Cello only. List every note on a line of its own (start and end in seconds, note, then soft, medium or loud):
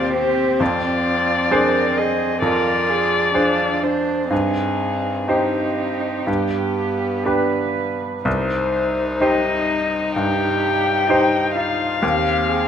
0.00 0.13 F4 soft
0.13 0.61 G4 medium
0.60 1.53 F4 soft
1.52 1.99 A#4 soft
1.98 2.41 G#4 soft
2.42 2.90 A#4 medium
2.89 3.36 G#4 soft
3.34 3.84 F4 soft
3.82 4.30 D4 soft
4.31 5.17 D#4 soft
5.28 6.28 D#4 soft
6.27 7.28 G4 soft
7.26 8.26 B4 soft
10.16 11.11 G4 soft
11.09 11.57 D#4 soft
11.56 12.02 F4 soft
12.02 12.50 G4 soft
12.48 12.68 G#4 soft